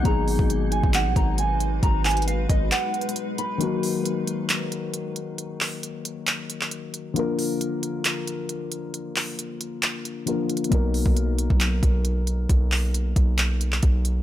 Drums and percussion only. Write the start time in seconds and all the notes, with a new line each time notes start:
0.05 kick, closed hi-hat
0.28 open hi-hat
0.39 kick
0.50 closed hi-hat
0.72 closed hi-hat
0.84 kick
0.94 clap, closed hi-hat
1.16 kick, closed hi-hat
1.38 closed hi-hat
1.60 closed hi-hat
1.83 kick, closed hi-hat
2.05 clap, closed hi-hat, open hi-hat
2.11 closed hi-hat
2.17 closed hi-hat
2.22 closed hi-hat
2.28 closed hi-hat
2.50 kick, closed hi-hat
2.72 clap, closed hi-hat
2.94 closed hi-hat
3.01 closed hi-hat
3.09 closed hi-hat
3.16 closed hi-hat
3.38 closed hi-hat
3.61 closed hi-hat
3.83 open hi-hat
4.05 closed hi-hat
4.27 closed hi-hat
4.49 clap, closed hi-hat
4.72 closed hi-hat
4.94 closed hi-hat
5.16 closed hi-hat
5.38 closed hi-hat
5.61 clap, open hi-hat
5.83 closed hi-hat
6.05 closed hi-hat
6.27 clap, closed hi-hat
6.50 closed hi-hat
6.61 clap
6.71 closed hi-hat
6.94 closed hi-hat
7.16 closed hi-hat
7.39 open hi-hat
7.61 closed hi-hat
7.83 closed hi-hat
8.05 clap, closed hi-hat
8.27 closed hi-hat
8.49 closed hi-hat
8.72 closed hi-hat
8.94 closed hi-hat
9.16 clap, open hi-hat
9.39 closed hi-hat
9.61 closed hi-hat
9.83 clap, closed hi-hat
10.05 closed hi-hat
10.27 closed hi-hat
10.49 closed hi-hat
10.57 closed hi-hat
10.64 closed hi-hat
10.72 kick, closed hi-hat
10.94 open hi-hat
11.06 kick
11.17 closed hi-hat
11.38 closed hi-hat
11.50 kick
11.60 clap, closed hi-hat
11.83 kick, closed hi-hat
12.05 closed hi-hat
12.27 closed hi-hat
12.50 kick, closed hi-hat
12.72 clap, open hi-hat
12.94 closed hi-hat
13.16 kick, closed hi-hat
13.38 clap, closed hi-hat
13.61 closed hi-hat
13.72 clap
13.83 kick, closed hi-hat
14.05 closed hi-hat